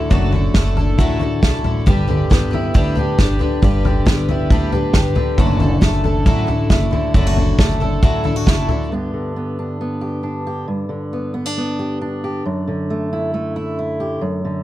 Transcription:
Already playing: D3 E4 A4
0.10 F#1 F#2 F#3 A3 D4 E4 F#4 A4, kick, floor tom
0.32 D3 D4 E4 A4, floor tom
0.54 F#1 A3 D4 E4 A4, kick, snare, floor tom
0.77 D4 E4 A4, floor tom
0.98 A1 F#3 A3 D4 E4 A4, kick, floor tom
1.19 E4 F#4 A4, floor tom
1.23 D4
1.42 B1 A3 D4 E4 A4, kick, snare, floor tom
1.64 A1 D3 D4 E4 A4, floor tom
1.86 G1 G2 G3 D4 G4 B4, kick, floor tom
2.08 D3 D4 G4 B4, floor tom
2.30 G1 G3 B3 D4 G4 B4, kick, snare, floor tom
2.51 D4 E4 G4 B4, floor tom
2.74 D2 G3 D4 G4 B4, kick, floor tom
2.95 D4 G4 B4, floor tom
3.18 G1 G3 D4 G4 B4, kick, snare, floor tom
3.39 D3 D4 G4 B4, floor tom
3.62 G1 G2 G3 D4 G4 B4, kick, floor tom
3.85 D3 D4 G4 B4, floor tom
4.06 G1 G3 B3 D4 G4 B4, kick, snare, floor tom
4.29 D4 E4 G4 B4, floor tom
4.50 D2 G3 D4 G4 B4, kick, floor tom
4.72 D4 G4 B4, floor tom
4.94 G1 G3 D4 G4 B4, kick, snare, floor tom
5.15 D3 D4 G4 B4, floor tom
5.38 F#1 F#2 F#3 A3 D4 E4 F#4 A4, kick, floor tom
5.60 D3 D4 E4 A4, floor tom
5.81 F#1 A3 D4 E4 A4, kick, snare, floor tom
6.04 D4 E4 A4, floor tom
6.26 A1 F#3 A3 D4 E4 A4, kick, floor tom
6.47 D4 E4 F#4 A4, floor tom
6.70 F#1 A3 D4 E4 A4, kick, snare, floor tom
6.91 D3 D4 E4 A4, floor tom
7.14 F#1 F#2 F#3 A3 D4 E4 A4, kick, floor tom
7.26 F#4
7.37 D3 D4 E4 A4, floor tom
7.58 F#1 A3 D4 E4 A4, kick, snare, floor tom
7.80 D4 E4 A4, floor tom
8.02 A1 F#3 A3 D4 E4 A4, kick, floor tom
8.24 D4 E4 A4, floor tom
8.36 F#4
8.46 F#1 A3 D4 E4 A4, kick, snare, floor tom
8.69 D3 D4 E4 A4, floor tom
8.91 G2 D3 B3 D4 G4
9.13 D3
9.36 B3
9.59 D4
9.81 B3
10.01 G4
10.23 D4
10.47 G4
10.68 G2
10.89 D3
11.13 B3
11.34 B3
11.46 D4
11.57 B3
11.79 G4
12.01 D4
12.24 G4
12.45 F#2
12.68 D3
12.90 A3
13.13 E4
13.34 A3
13.56 E4
13.79 E4
14.00 G4
14.21 F#2
14.45 D3

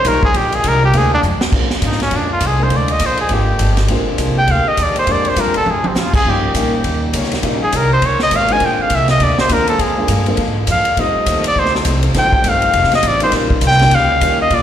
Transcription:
Already playing: C#3 G3 A#3 D#4
0.05 B1 D#3 G3 A#3 C#4 D#4 F4 G4 A#4, kick, hi-hat pedal, ride
0.23 G#4, kick
0.34 A#1 A#2 D3 F3 G#3 D4 F4 G4, kick, ride
0.52 G#4, ride
0.64 C2 A#2 F3 G#3 D4, kick, hi-hat pedal, ride
0.68 A#4
0.85 G4
0.93 D2 A#2 F3 G#3 A#3 C4 D4 F4, kick, ride
0.97 G#4
1.14 D4
1.23 F2 A#2 F3 G#3 D4, hi-hat pedal
1.41 muted upright bass stroke, snare
1.52 A#2 D3 F3 G#3 A#3 C4 D4 F4, kick, crash
1.70 muted upright bass stroke, snare
1.82 G#2 A#2 F3 G#3 D4, kick, hi-hat pedal, ride
1.86 D#4
1.92 snare
2.00 C#4, snare, ride
2.11 F2 A#2 F3 G#3, kick, ride
2.15 D4
2.33 F4
2.40 C2 A#2 F3 G#3 D4, kick, hi-hat pedal, ride
2.47 G#4
2.59 G#3 A#3 C4 D4 G#4
2.63 C5
2.70 D2 A#2 F3 G#3 D4, kick, ride
2.76 D5
2.88 D#5, ride
2.99 A#1 A#2 F3 G#3 D4, kick, hi-hat pedal, ride
3.06 C5
3.17 G#4, ride
3.29 G#1 A#2 F3 G#3 A#3 C4 D4 F4, kick, ride
3.33 G4
3.59 G1 A#2 F3 G#3 D4, kick, hi-hat pedal, ride
3.77 snare, ride
3.88 A#1 A#2 F3 G#3 A#3 C4 D4 F4 G4, kick, ride
4.18 C2 A#2 F3 G#3 D4, kick, hi-hat pedal, ride
4.38 G5
4.47 D2 A#2 F3 G#3 D4 F5, kick, ride
4.66 D#5, muted upright bass stroke
4.77 D#2 A#2 F3 G#3 D4, kick, hi-hat pedal, ride
4.82 D5
4.96 C5, ride
5.07 F2 A#2 F3 G#3 A#3 C4 D4 F4, kick, ride
5.12 D5
5.25 C5, ride
5.36 G2 A#2 F3 G#3 A#3 C4 D4 F4, kick, hi-hat pedal, ride
5.40 A#4
5.46 F2
5.54 D2 A4, ride
5.66 G#2 A#2 F3 G#3 D4, high tom
5.70 G#4
5.75 F2
5.84 D2 C4, high tom
5.95 F2 A#2 F3 G#3 D4, snare, hi-hat pedal
6.00 F4
6.14 G#4, kick, crash
6.25 G2 C#3 D#3 G3 A#3 C#4 D#4 F4 G4, kick
6.30 G4
6.54 A#2 D#3 G3 A#3 C#4 D#4 F4 G4, kick, hi-hat pedal, ride
6.84 D#2 D#3 A#3 C#4 G4, kick, ride
7.13 C#2 D#3 A#3 C#4 G4, kick, hi-hat pedal, ride
7.24 snare
7.32 snare, ride
7.43 A#1 D#3 G3 A#3 C#4 D#4 F4 G4, kick, ride
7.63 G#4
7.72 C2 D#3 A#3 C#4 G4 A#4, kick, hi-hat pedal, ride
7.93 C5
8.02 C#2 D#3 A#3 C#4 G4 C#5, kick, ride
8.19 D#5, snare
8.31 G#1 D#3 A#3 C#4 G4, kick, hi-hat pedal, ride
8.36 F5
8.48 G#3 A#3 C4 D4 F4, ride
8.52 G#5
8.60 A#1 A#2 D3 F3 G#3 F4, kick, ride
8.64 D4 G5
8.78 F5, muted upright bass stroke
8.90 C2 A#2 F3 G#3 D4, kick, hi-hat pedal, ride
8.95 E5
9.08 D#5, snare, ride
9.20 D2 A#2 F3 G#3 D4 D5, kick, ride
9.38 C5, muted upright bass stroke, snare
9.49 D#2 A#2 F3 G#3 A#3 C4 D4 F4 A#4, kick, hi-hat pedal, ride
9.67 A4, ride
9.79 F2 A#2 F3 G#3 D4 G#4, kick, ride
9.97 G#3 A#3 C4 D4 F4
10.08 G2 A#2 F3 G#3 D4, kick, hi-hat pedal, ride
10.26 G#3 A#3 C4 D4 F4, ride
10.37 G#2 A#2 F3 G#3, kick, ride
10.41 D4
10.67 F2 A#2 F3 G#3 D4, kick, hi-hat pedal, ride
10.71 F5
10.85 muted upright bass stroke, ride
10.97 F2 C3 D#3 F3 G3 A3 C4 D#4 F4 D#5, kick, ride
11.15 muted upright bass stroke
11.26 D#2 F2 D#3 A3 C4, kick, hi-hat pedal, ride
11.44 D5, ride
11.56 D2 F2 D#3 A3 C4 C5, kick
11.66 snare
11.75 A4, snare
11.85 C2 F2 D#3 A3 C4, kick, hi-hat pedal, ride
12.03 ride
12.14 A1 F2 D#3 G3 A3 C4 D#4 F4 G5, kick, snare, ride
12.33 kick
12.44 G1 F2 D#3 A3 C4, kick, hi-hat pedal, ride
12.49 F5
12.62 ride
12.73 F1 F2 D#3 A3 C4, kick, ride
12.84 snare
12.91 muted upright bass stroke, snare, ride
12.95 D#5
13.03 A1 F2 D#3 A3 C4, kick, hi-hat pedal, ride
13.08 D5
13.20 G3 A#3 C#4 D#4 F4 C5, ride
13.32 A#1 C#3 D#3 G3 A#3 C#4 G4, kick, snare, ride
13.50 kick
13.61 C2 D#3 A#3 C#4 G4, kick, hi-hat pedal, ride
13.67 G5
13.71 snare
13.79 G3 A#3 C#4 D#4 F4, snare, ride
13.91 C#2 D#3 A#3 C#4 G4 F5, kick, ride
14.21 D#2 D#3 G3 A#3 C#4 D#4 F4 G4, kick, hi-hat pedal, ride
14.42 D#5
14.50 A#2 D3 G#3 D4 F4, kick, ride
14.54 D5

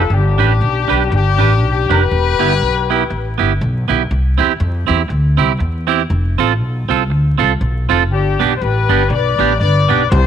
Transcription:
Already playing: A4
0.10 G1 D4 G4
0.38 A1 D4 G4 B4
0.61 B1
0.88 B1 D4 G4 B4
1.11 G1 D4 G4, muted clean electric guitar stroke
1.38 A1 D4 G4 B4
1.62 B1
1.89 F1 D4 G4 B4
2.11 E1
2.39 G1 B3 E4 G4
2.61 B1
2.90 B3 E4 G4
3.10 A1, muted clean electric guitar stroke
3.38 G1 B3 E4 G4
3.61 B1
3.88 B1 B3 E4 G4
4.11 C2
4.38 E2 C4 E4 G4
4.60 F2
4.87 E2 C4 E4 G4
5.08 D2, muted clean electric guitar stroke
5.37 C2 C4 E4 G4
5.59 E2, muted clean electric guitar stroke
5.87 C4 E4 G4
6.10 F1
6.38 A1 C4 F4 A4
6.60 B1
6.88 C2 C4 F4 A4
7.10 D2, muted clean electric guitar stroke
7.38 C2 C4 F4 A4
7.61 B1
7.89 F1 C4 F4 A4
8.10 G1 D4 G4
8.40 B1 B3 D4 G4
8.56 C5
8.60 A1 G4 B4
8.89 G1 B3 D4 G4
9.09 B1 B4 D5, muted clean electric guitar stroke
9.39 A1 B3 D4 G4
9.59 G1 B4 D5
9.89 B1 B3 D4 G4
10.10 C2 G4 C5

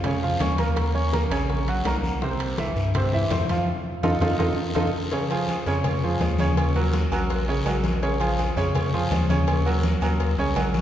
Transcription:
Already playing: F2
0.04 C#3 C#4 C#5, high bongo, high conga, low conga, high timbale, long guiro
0.23 F3 F4 F5, high conga
0.40 D#2 C#4 C#5 C#6, high bongo, low bongo, high conga, high timbale, low timbale, short guiro
0.58 A#3 A#4 A#5, high conga, high timbale, short guiro
0.76 high bongo, high conga, high timbale, long guiro
0.94 C#4 C#5 C#6, high conga
1.12 A#3 A#4 A#5, high bongo, high conga, high timbale, low timbale, short guiro
1.31 A#1 C#3 C#4 C#5, high bongo, high conga, high timbale, short guiro
1.50 high bongo, high conga, long guiro
1.67 F#3 F#4 F#5, high bongo, high conga, high timbale
1.85 C2 A#3 A#4 A#5, high bongo, low bongo, high conga, high timbale, low timbale, short guiro
2.03 high bongo, high conga, short guiro
2.22 C3 C4 C5, high bongo, high conga, long guiro
2.40 high conga, high timbale
2.58 E3 E4 E5, high bongo, high conga, high timbale, low timbale, short guiro
2.76 G2, high conga, short guiro
2.94 C3 C4 C5, high bongo, high conga, low conga, high timbale, long guiro
3.13 E3 E4 E5, high conga, low conga
3.31 F2 C4 C5 C6, high bongo, low bongo, high conga, high timbale, low timbale, short guiro
3.49 F3 F4 F5, high conga, high timbale, short guiro
4.03 F2 D#4 F4 A4, high bongo, high conga, high timbale, long guiro
4.21 F2 D#4 F4 A4, high bongo, high conga, high timbale, long guiro
4.39 F2 D#4 F4 A4, high bongo, high conga, high timbale, long guiro
4.75 F2 D#4 F4 A4, high bongo, high conga, high timbale, long guiro
5.12 C#3 C#4 C#5, cowbell, high conga, long guiro
5.30 F3 F4 G#4, cowbell, high conga, low agogo
5.48 cowbell, high conga, low timbale, low agogo, short guiro
5.66 F2 C#3 C#4 C#5, cowbell, high conga, short guiro
5.84 cowbell, high conga, low conga, low agogo, long guiro
6.03 F3 F4 G#4, high conga
6.20 D#2, cowbell, high conga, low timbale, low agogo, short guiro
6.38 C#3 C#4 C#5, high conga, low agogo, short guiro
6.57 cowbell, high conga, low agogo, long guiro
6.75 F#3 F#4 A#4, high conga, low agogo
6.93 cowbell, high conga, low timbale, short guiro
7.11 A#1 F#3 F#4 A#4, high conga, low agogo, short guiro
7.29 cowbell, high conga, low agogo, long guiro
7.47 C#3 C#4 C#5, high conga
7.65 A#1 F#3 F#4 A#4, cowbell, high conga, low timbale, low agogo, short guiro
7.84 cowbell, high conga, short guiro
8.02 C#3 C#4 C#5, cowbell, high conga, long guiro
8.20 F3 F4 G#4, cowbell, high conga, low agogo
8.39 cowbell, high conga, low timbale, low agogo, short guiro
8.57 F2 C#3 C#4 C#5, cowbell, high conga, short guiro
8.75 cowbell, high conga, low conga, low agogo, long guiro
8.93 F3 F4 G#4, high conga
9.11 D#2, cowbell, high conga, low timbale, low agogo, short guiro
9.29 C#3 C#4 C#5, high conga, low agogo, short guiro
9.47 cowbell, high conga, low agogo, long guiro
9.65 F#3 F#4 A#4, high conga, low agogo
9.83 cowbell, high conga, low timbale, short guiro
10.01 D#2 F#3 F#4 A#4, high conga, low agogo, short guiro
10.20 cowbell, high conga, low agogo, long guiro
10.38 C2 C#3 C#4 C#5, high conga
10.56 A#1 F#3 F#4 A#4, cowbell, high conga, low timbale, low agogo, short guiro
10.74 cowbell, high conga, short guiro

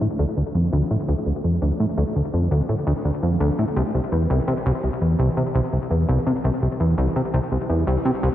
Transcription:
0.01 A2
0.19 D2
0.37 D2
0.55 F2
0.73 D2
0.91 A2
1.09 D2
1.26 D2
1.44 F2
1.62 D2
1.80 A2
1.97 D2
2.16 D2
2.33 F2
2.51 D2
2.69 A2
2.87 D2
3.05 D2
3.23 F2
3.41 D2
3.59 A2
3.76 C2
3.94 C2
4.12 E2
4.30 C2
4.48 C3
4.66 C2
4.84 C2
5.01 E2
5.19 C2
5.37 C3
5.55 C2
5.73 C2
5.91 E2
6.09 C2
6.27 C3
6.44 C2
6.62 C2
6.80 E2
6.98 C2
7.16 C3
7.34 C2
7.52 C2
7.70 E2
7.87 C2
8.05 C3
8.23 C2

